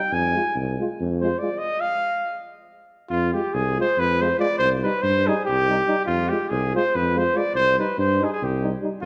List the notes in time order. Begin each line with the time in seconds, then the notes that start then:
Already playing: G5
0.12 F2 G#5
0.35 G#3 F4
0.56 C2
0.79 G#3 F4
1.00 F2
1.21 G#3 F4 C5
1.39 G#3 F4 D5
1.58 D#5
1.80 F5
3.10 F2 F4
3.33 G#3 F4 G4
3.53 C2 G#4
3.78 G#3 F4 C5
3.98 F2 B4
4.20 G#3 F4 C5
4.39 G#3 F4 D5
4.58 C2 C5
4.83 G3 D#4 B4
5.02 G2 C5
5.27 G3 D#4 G#4
5.45 C2 G4
5.69 G3 D#4
5.87 G3 D#4
6.06 F2 F4
6.29 G#3 F4 G4
6.49 C2 G#4
6.75 G#3 F4 C5
6.95 F2 B4
7.15 G#3 F4 C5
7.34 G#3 F4 D5
7.54 C2 C5
7.78 G3 D#4 B4
7.98 G2 C5
8.21 G3 D#4 G#4
8.25 G#4
8.32 G#4
8.42 C2 G4
8.62 G3 D#4
8.81 G3 D#4
9.02 F2 F4